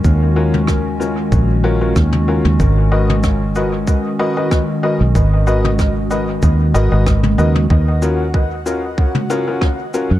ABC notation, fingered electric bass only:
X:1
M:4/4
L:1/16
Q:"Swing 16ths" 1/4=94
K:Ebm
V:1 name="Fingered electric bass" clef=bass
E,,8 B,,,4 E,,3 E,, | A,,,8 z6 z C,, | A,,,8 E,,2 A,,, A,,,3 E,,2 | E,,8 z6 z G,, |]